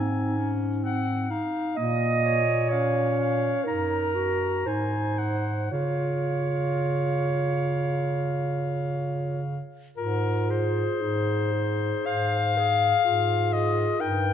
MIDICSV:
0, 0, Header, 1, 5, 480
1, 0, Start_track
1, 0, Key_signature, -5, "major"
1, 0, Tempo, 936037
1, 906, Time_signature, 4, 2, 24, 8
1, 1386, Tempo, 975610
1, 2346, Tempo, 1069519
1, 4266, Tempo, 1027397
1, 4753, Key_signature, -4, "major"
1, 5226, Tempo, 1071429
1, 5706, Tempo, 1001669
1, 6186, Tempo, 940439
1, 6836, End_track
2, 0, Start_track
2, 0, Title_t, "Soprano saxophone"
2, 0, Program_c, 0, 64
2, 0, Note_on_c, 0, 80, 47
2, 273, Note_off_c, 0, 80, 0
2, 427, Note_on_c, 0, 78, 50
2, 671, Note_on_c, 0, 77, 47
2, 678, Note_off_c, 0, 78, 0
2, 910, Note_on_c, 0, 75, 42
2, 917, Note_off_c, 0, 77, 0
2, 1148, Note_off_c, 0, 75, 0
2, 1150, Note_on_c, 0, 73, 47
2, 1393, Note_on_c, 0, 77, 49
2, 1400, Note_off_c, 0, 73, 0
2, 1625, Note_off_c, 0, 77, 0
2, 1632, Note_on_c, 0, 77, 45
2, 1860, Note_off_c, 0, 77, 0
2, 1866, Note_on_c, 0, 82, 46
2, 2356, Note_on_c, 0, 80, 41
2, 2362, Note_off_c, 0, 82, 0
2, 2583, Note_on_c, 0, 78, 41
2, 2590, Note_off_c, 0, 80, 0
2, 2822, Note_off_c, 0, 78, 0
2, 2830, Note_on_c, 0, 77, 36
2, 4585, Note_off_c, 0, 77, 0
2, 4750, Note_on_c, 0, 70, 53
2, 5001, Note_on_c, 0, 72, 55
2, 5008, Note_off_c, 0, 70, 0
2, 5706, Note_on_c, 0, 77, 78
2, 5714, Note_off_c, 0, 72, 0
2, 6426, Note_on_c, 0, 75, 59
2, 6434, Note_off_c, 0, 77, 0
2, 6669, Note_on_c, 0, 79, 64
2, 6677, Note_off_c, 0, 75, 0
2, 6836, Note_off_c, 0, 79, 0
2, 6836, End_track
3, 0, Start_track
3, 0, Title_t, "Clarinet"
3, 0, Program_c, 1, 71
3, 0, Note_on_c, 1, 63, 46
3, 660, Note_off_c, 1, 63, 0
3, 901, Note_on_c, 1, 75, 72
3, 1380, Note_on_c, 1, 73, 57
3, 1388, Note_off_c, 1, 75, 0
3, 1847, Note_on_c, 1, 70, 61
3, 1855, Note_off_c, 1, 73, 0
3, 2350, Note_on_c, 1, 72, 49
3, 2356, Note_off_c, 1, 70, 0
3, 2817, Note_off_c, 1, 72, 0
3, 2820, Note_on_c, 1, 73, 43
3, 4494, Note_off_c, 1, 73, 0
3, 4754, Note_on_c, 1, 65, 47
3, 5234, Note_on_c, 1, 63, 37
3, 5241, Note_off_c, 1, 65, 0
3, 5707, Note_off_c, 1, 63, 0
3, 5709, Note_on_c, 1, 72, 53
3, 5953, Note_on_c, 1, 68, 47
3, 5960, Note_off_c, 1, 72, 0
3, 6178, Note_off_c, 1, 68, 0
3, 6180, Note_on_c, 1, 65, 51
3, 6665, Note_on_c, 1, 63, 39
3, 6673, Note_off_c, 1, 65, 0
3, 6836, Note_off_c, 1, 63, 0
3, 6836, End_track
4, 0, Start_track
4, 0, Title_t, "Clarinet"
4, 0, Program_c, 2, 71
4, 0, Note_on_c, 2, 60, 50
4, 191, Note_on_c, 2, 61, 50
4, 199, Note_off_c, 2, 60, 0
4, 429, Note_on_c, 2, 60, 56
4, 437, Note_off_c, 2, 61, 0
4, 665, Note_off_c, 2, 60, 0
4, 668, Note_on_c, 2, 63, 51
4, 908, Note_on_c, 2, 58, 44
4, 916, Note_off_c, 2, 63, 0
4, 1250, Note_off_c, 2, 58, 0
4, 1388, Note_on_c, 2, 61, 48
4, 1841, Note_off_c, 2, 61, 0
4, 1858, Note_on_c, 2, 63, 44
4, 2098, Note_on_c, 2, 66, 43
4, 2105, Note_off_c, 2, 63, 0
4, 2353, Note_on_c, 2, 63, 49
4, 2359, Note_off_c, 2, 66, 0
4, 2817, Note_off_c, 2, 63, 0
4, 2820, Note_on_c, 2, 65, 37
4, 4494, Note_off_c, 2, 65, 0
4, 4987, Note_on_c, 2, 68, 39
4, 5455, Note_off_c, 2, 68, 0
4, 5469, Note_on_c, 2, 68, 39
4, 5944, Note_off_c, 2, 68, 0
4, 5947, Note_on_c, 2, 68, 35
4, 6419, Note_off_c, 2, 68, 0
4, 6431, Note_on_c, 2, 68, 40
4, 6659, Note_off_c, 2, 68, 0
4, 6662, Note_on_c, 2, 70, 35
4, 6836, Note_off_c, 2, 70, 0
4, 6836, End_track
5, 0, Start_track
5, 0, Title_t, "Bass clarinet"
5, 0, Program_c, 3, 71
5, 0, Note_on_c, 3, 44, 51
5, 770, Note_off_c, 3, 44, 0
5, 910, Note_on_c, 3, 46, 59
5, 1842, Note_off_c, 3, 46, 0
5, 1867, Note_on_c, 3, 42, 40
5, 2341, Note_off_c, 3, 42, 0
5, 2349, Note_on_c, 3, 44, 36
5, 2811, Note_off_c, 3, 44, 0
5, 2823, Note_on_c, 3, 49, 43
5, 4581, Note_off_c, 3, 49, 0
5, 4753, Note_on_c, 3, 44, 55
5, 5171, Note_off_c, 3, 44, 0
5, 5227, Note_on_c, 3, 44, 46
5, 5651, Note_off_c, 3, 44, 0
5, 5707, Note_on_c, 3, 44, 42
5, 6132, Note_off_c, 3, 44, 0
5, 6187, Note_on_c, 3, 44, 47
5, 6613, Note_off_c, 3, 44, 0
5, 6668, Note_on_c, 3, 43, 60
5, 6836, Note_off_c, 3, 43, 0
5, 6836, End_track
0, 0, End_of_file